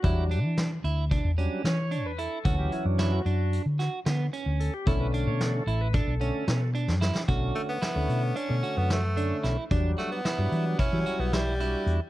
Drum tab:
HH |x-x-x-x-x-x-x-x-x-|x-x-x-x-x-x-x-x-x-|x-x-x-x-x-x-x-x---|x-x-x-x-x-x-x-x-x-|
SD |----o-------o-----|----o-----o-o-----|----o-------o--ooo|----o-------o---o-|
BD |o-------o---------|o-----------------|o-------o---------|o-----------------|

HH |x-x-x-x-x-x-x-x-x-|
SD |--o-o---o---o-----|
BD |o-------o---------|